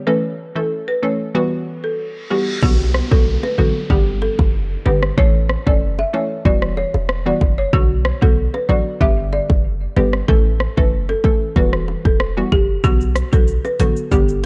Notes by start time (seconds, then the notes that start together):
0.07 E3 A3 C#4 A4 B4
0.56 E3 A3 C#4 A4
0.88 B4
1.02 E3 A3 C#4 A4 C#5
1.35 E3 G3 B3 F#4 B4, reverse cymbal
1.84 A4
2.30 E3 G3 B3 F#4 G4
2.62 B1 D3 F#3 B3 F#4, kick, crash, downlifter
2.94 cross-stick
3.11 B1 D3 F#3 B3 F#4 A4, kick
3.43 B4, high bongo
3.58 A1 D3 F#3 B3 F#4 A4, low bongo
3.90 G1 D3 G3 B3 G4, kick
4.22 A4, high bongo
4.39 F#1, kick, high bongo
4.86 G1 D3 G3 B3 G4 B4, high bongo, low bongo
5.03 cross-stick
5.18 A1 E3 A3 C#4 A4 C#5, kick
5.50 cross-stick
5.67 F#1 E3 A3 C#4 A4 D5, kick
5.99 E5, high bongo
6.13 E3 A3 C#4 A4 C#5, low bongo
6.45 E1 E3 G3 B3 F#4 D5, kick
6.62 cross-stick
6.77 C#5, high bongo
6.94 E1, high bongo
7.09 cross-stick
7.26 E3 G3 B3 F#4 D5
7.41 F#1, kick, high bongo, low bongo
7.58 C#5
7.73 B1 D3 F#3 B3 F#4, kick
8.05 cross-stick
8.22 B1 D3 F#3 B3 F#4 A4, kick
8.54 B4, high bongo
8.69 A1 D3 F#3 B3 F#4 D5, low bongo
9.01 G1 D3 G3 B3 G4 E5, kick
9.33 D5, high bongo
9.50 F#1, kick, high bongo
9.96 G1 D3 G3 B3 G4 B4, high bongo, low bongo
10.13 cross-stick
10.28 A1 E3 A3 C#4 A4, kick
10.60 cross-stick
10.77 F#1 E3 A3 C#4 A4 B4, kick
11.09 A4, high bongo
11.24 E3 A3 C#4 A4, kick, low bongo
11.56 E1 E3 G3 B3 F#4 B4, kick
11.73 cross-stick
11.88 high bongo
12.05 E1 A4, kick, high bongo
12.20 cross-stick
12.37 E3 G3 B3 F#4
12.52 F#1 G4, kick, high bongo, low bongo
12.84 B1 D3 F#3 B3 F#4, kick, shaker
13.01 shaker
13.16 cross-stick, closed hi-hat, shaker
13.32 B1 D3 F#3 B3 F#4 A4, kick, shaker
13.47 shaker
13.65 B4, high bongo, shaker
13.79 A1 D3 F#3 B3 F#4 A4, closed hi-hat, low bongo, shaker
13.96 shaker
14.11 G1 D3 G3 B3 G4, kick, shaker
14.28 shaker